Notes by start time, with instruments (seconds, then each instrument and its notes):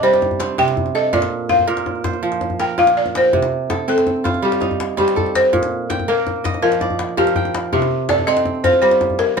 Already playing: kora C3 C4 D4
0.03 kora G3, balafon C5, djembe slap
0.13 djembe slap
0.22 djembe tone
0.31 djembe bass
0.40 kora C4, djembe slap
0.58 kora C3, balafon G5, djembe slap, djembe tone
0.68 djembe slap
0.77 djembe bass
0.86 djembe tone
0.95 kora A4, balafon D#5
1.13 kora A#2, balafon D5, djembe slap, djembe bass
1.22 djembe slap, djembe tone
1.31 djembe slap
1.49 kora C5, balafon F5, djembe tone
1.59 djembe slap, djembe bass
1.67 kora A#2 A#4
1.77 djembe slap
1.86 djembe tone
1.95 djembe slap
2.04 kora C5, djembe slap, djembe bass
2.13 djembe tone
2.23 kora F3, djembe slap
2.32 djembe slap
2.41 djembe tone
2.50 djembe bass
2.60 kora A#4, balafon G5, djembe slap
2.78 kora A#2, balafon F5, djembe tone
2.87 djembe slap
2.97 balafon D5, djembe slap
3.06 djembe slap, djembe tone
3.15 balafon C5, kora G5, djembe slap
3.33 kora C3, djembe bass
3.42 djembe slap, djembe tone
3.52 djembe slap
3.70 kora A4, djembe slap, djembe tone
3.88 kora C4, balafon A4, djembe slap
3.98 djembe slap
4.07 djembe slap, djembe tone
4.16 djembe slap
4.24 kora F4, djembe slap, djembe bass
4.34 djembe tone
4.42 kora G3, balafon G4
4.52 djembe slap
4.61 kora D#4, djembe tone
4.71 djembe bass
4.80 djembe slap
4.89 djembe slap
4.97 kora G3 C4, balafon G4, djembe slap, djembe tone
5.08 djembe slap
5.16 kora A4, djembe bass
5.26 djembe tone
5.35 balafon C5, djembe slap
5.53 kora A#2, djembe bass
5.63 djembe slap, djembe tone
5.72 djembe slap
5.90 kora G5, djembe slap, djembe tone
6.00 djembe bass
6.08 kora A#3 A#4, balafon A#4, djembe slap
6.27 djembe slap, djembe tone
6.36 djembe slap
6.44 kora D#5, djembe slap, djembe bass
6.54 djembe tone
6.62 kora F3, balafon A#4
6.72 djembe slap
6.81 kora D5, djembe tone
6.90 djembe bass
6.99 djembe slap
7.09 djembe slap
7.17 kora F3 A#4, balafon G4, djembe slap, djembe tone
7.27 djembe slap
7.36 kora G5, djembe bass
7.45 djembe slap, djembe tone
7.54 djembe slap
7.73 kora C3, balafon G4, djembe bass
7.82 djembe slap, djembe tone
7.91 djembe slap
8.09 kora A4, balafon D5, djembe slap, djembe tone
8.18 djembe bass
8.27 kora C4, balafon D#5, djembe slap
8.37 djembe slap
8.45 djembe slap, djembe tone
8.55 djembe slap
8.64 kora F4, balafon C5, djembe slap, djembe bass
8.73 djembe tone
8.82 kora G3, balafon C5
8.91 djembe slap
9.01 djembe tone
9.10 djembe bass
9.19 balafon A#4, djembe slap
9.28 djembe slap
9.37 kora G3